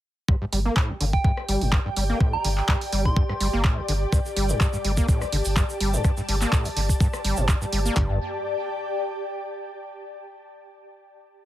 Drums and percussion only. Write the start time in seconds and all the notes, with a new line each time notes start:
0.28 kick, cross-stick
0.53 open hi-hat
0.76 kick, clap
1.01 open hi-hat
1.13 kick
1.24 kick
1.37 cross-stick
1.49 open hi-hat
1.61 open hi-hat
1.72 kick, clap
1.96 open hi-hat
2.21 kick, cross-stick
2.45 open hi-hat
2.58 clap
2.69 kick, clap
2.81 open hi-hat
2.93 open hi-hat
3.05 kick
3.17 kick
3.29 cross-stick
3.41 open hi-hat
3.65 kick, clap
3.88 open hi-hat
4.12 kick, cross-stick, shaker
4.26 shaker
4.37 open hi-hat
4.49 shaker
4.61 kick, clap, shaker
4.73 shaker
4.85 open hi-hat
4.97 kick, shaker
5.09 kick, shaker
5.21 cross-stick, shaker
5.32 open hi-hat
5.45 open hi-hat, shaker
5.56 kick, clap, shaker
5.69 shaker
5.80 open hi-hat
5.94 shaker
6.04 kick, cross-stick, shaker
6.17 shaker
6.29 open hi-hat
6.41 clap, shaker
6.53 kick, clap, shaker
6.65 open hi-hat, shaker
6.77 open hi-hat
6.89 kick, shaker
7.00 kick, shaker
7.13 cross-stick, shaker
7.25 open hi-hat
7.37 shaker
7.49 kick, clap, shaker
7.62 shaker
7.73 open hi-hat
7.86 shaker
7.97 kick, clap, floor tom